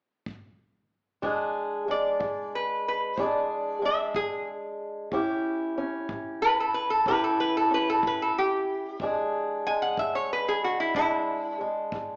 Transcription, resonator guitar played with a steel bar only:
1.91 2.52 D5 medium
2.55 2.85 B4 medium
2.88 3.21 B4 medium
3.21 3.82 D5 medium
3.85 4.15 E5 medium
4.16 4.46 G#4 medium
6.42 6.57 B4 medium
6.60 6.75 A4 medium
6.74 6.89 B4 medium
6.90 7.06 A4 medium
7.08 7.23 B4 medium
7.24 7.39 A4 medium
7.40 7.55 B4 medium
7.57 7.71 A4 medium
7.74 7.88 B4 medium
7.90 8.04 A4 medium
8.07 8.21 B4 medium
8.22 8.36 A4 medium
8.38 9.00 G4 medium
9.67 9.82 G#5 medium
9.82 9.97 F#5 medium
9.99 10.14 E5 medium
10.15 10.30 C#5 medium
10.33 10.47 B4 medium
10.49 10.63 G#4 medium
10.64 10.79 F#4 medium
10.80 10.95 E4 medium
10.96 11.58 E4 medium

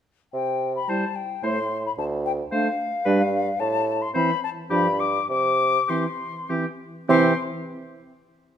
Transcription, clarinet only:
0.90 1.06 E4 soft
1.44 1.60 E4 soft
2.53 2.69 D4 soft
3.06 3.22 D4 medium
4.15 4.31 C4 soft
4.71 4.87 D4 soft
5.90 6.06 C4 soft
6.50 6.66 C4 soft
7.09 7.33 C4 medium

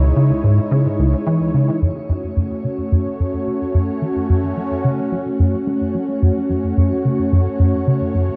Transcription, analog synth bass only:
0.00 0.12 C#2 medium
0.16 0.32 C#3 medium
0.44 0.59 G#2 medium
0.71 0.87 C#3 loud
0.99 1.15 C#2 medium
1.26 1.50 E3 loud
1.54 1.70 C#3 medium
1.82 1.91 F#2 medium
2.09 2.32 F#2 medium
2.36 2.52 F#2 medium
2.64 2.80 C#3 medium
2.92 3.07 F#2 loud
3.19 3.35 F#2 medium
3.47 3.62 C#3 medium
3.74 3.90 F#2 medium
4.01 4.11 E3 medium
4.29 4.53 F#2 medium
4.57 4.72 F#3 medium
4.84 5.00 C#3 medium
5.12 5.27 F#3 loud
5.39 5.55 F#2 medium
5.67 5.90 A3 loud
5.94 6.10 F#3 medium
6.22 6.31 F#2 medium
6.49 6.73 F#2 medium
6.77 6.93 F#2 medium
7.05 7.20 C#3 medium
7.32 7.48 F#2 loud
7.59 7.75 F#2 medium
7.87 8.03 C#3 medium
8.14 8.30 F#2 medium

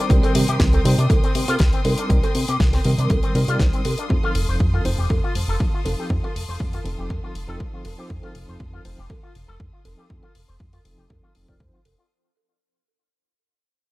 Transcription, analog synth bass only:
0.10 0.20 C2 medium
0.35 0.45 C3 loud
0.49 0.57 C3 medium
0.60 0.79 C2 loud
0.85 0.95 C3 loud
0.98 1.07 C3 medium
1.10 1.20 C2 medium
1.35 1.45 C3 medium
1.48 1.57 C3 loud
1.60 1.70 C2 medium
1.85 1.95 C3 medium
2.10 2.20 C2 medium
2.35 2.45 C3 loud
2.49 2.57 C3 medium
2.60 2.79 C2 medium
2.85 2.95 C3 medium
2.98 3.07 C3 medium
3.10 3.20 C2 medium
3.35 3.45 C3 medium
3.48 3.57 C3 medium
3.60 3.70 C2 medium
3.85 3.95 C3 medium
4.10 4.20 F2 medium
4.35 4.45 F1 loud
4.49 4.57 F1 medium
4.60 4.79 F2 medium
4.85 4.95 F1 loud
4.98 5.07 F1 medium
5.10 5.20 F2 medium
5.35 5.45 F1 loud
5.48 5.57 F1 medium
5.60 5.70 F2 medium
5.85 5.95 F1 medium
6.10 6.20 F2 loud
6.35 6.45 F1 loud
6.48 6.57 F1 medium
6.60 6.79 F2 medium
6.85 6.95 F1 loud
6.98 7.07 F1 medium
7.10 7.20 F2 medium
7.35 7.45 F1 medium
7.48 7.57 F1 medium
7.60 7.70 F2 medium
7.85 7.95 F1 medium
8.10 8.20 F2 medium
8.35 8.45 F1 loud
8.49 8.57 F1 medium
8.60 8.79 F2 medium
8.85 8.95 F1 medium
8.98 9.07 F1 medium
9.10 9.20 F2 medium
9.36 9.45 F1 loud
9.48 9.57 F1 medium
9.60 9.70 F2 medium
9.85 9.95 F1 medium
10.10 10.20 F2 medium
10.35 10.45 F1 loud
10.49 10.57 F1 medium
10.60 10.79 F2 medium
10.85 10.95 F1 medium
10.99 11.07 F1 medium
11.10 11.20 F2 medium
11.35 11.45 F1 medium
11.48 11.57 F1 medium
11.60 11.70 F2 medium
11.86 11.95 F1 medium

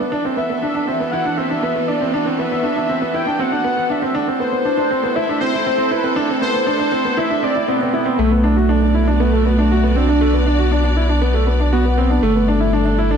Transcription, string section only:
0.00 0.12 G3 medium
0.00 1.74 D4 medium
0.00 4.56 A4 medium
0.12 4.16 E3 medium
0.29 4.16 B3 medium
0.41 5.68 F#4 medium
4.15 8.18 A3 medium
4.29 8.88 E4 medium
4.57 8.19 A4 loud
8.19 13.17 B3 medium
8.31 12.87 F#4 medium
8.69 13.17 D5 medium
12.22 13.17 G3 medium
12.36 13.17 A4 medium
12.45 13.17 D4 medium

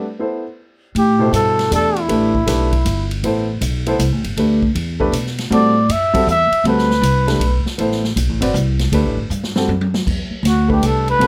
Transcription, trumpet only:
0.98 1.32 G4 medium
1.35 1.70 A4 loud
1.74 2.01 A4 loud
2.00 3.12 E4 medium
5.54 5.93 D5 medium
5.92 6.28 E5 medium
6.31 6.64 E5 loud
6.68 7.63 B4 medium
10.47 10.69 F#4 medium
10.72 10.88 G4 medium
10.86 11.09 A4 medium
11.10 11.27 B4 loud

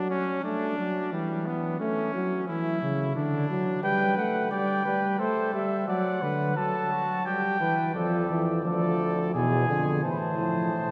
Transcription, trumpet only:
0.10 0.43 C#4 medium
0.44 1.11 D4 medium
1.12 1.48 G3 medium
1.46 1.79 B3 medium
1.80 2.47 C#4 medium
2.48 3.15 E4 medium
3.16 3.82 D4 medium
3.83 4.50 B4 medium
4.51 4.85 D5 medium
4.85 5.21 B4 medium
5.19 5.87 A4 medium
5.88 6.24 D5 medium
6.22 6.58 B4 medium
6.57 6.93 A4 medium
6.92 7.25 F#4 medium
7.26 7.60 G4 medium
7.61 7.95 B4 medium
7.96 8.48 A4 medium
8.65 9.33 A4 medium
9.34 10.02 G#4 medium
10.04 10.91 C5 medium

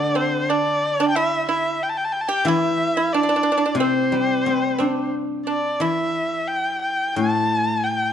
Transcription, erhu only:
0.00 0.18 D5 medium
0.16 0.51 C5 medium
0.49 1.08 D5 medium
1.08 1.17 G5 medium
1.16 1.48 E5 medium
1.49 1.84 E5 medium
1.83 1.91 G5 medium
1.89 1.99 A5 medium
1.97 2.06 G5 medium
2.04 2.14 A5 medium
2.12 2.22 G5 medium
2.21 2.29 A5 medium
2.28 2.48 G5 medium
2.47 3.14 E5 medium
3.13 3.79 D5 medium
3.80 5.10 C5 medium
5.46 5.82 D5 medium
5.81 6.49 E5 medium
6.47 6.81 G5 medium
6.82 7.17 G5 medium
7.15 7.85 A5 medium
7.84 8.13 G5 medium

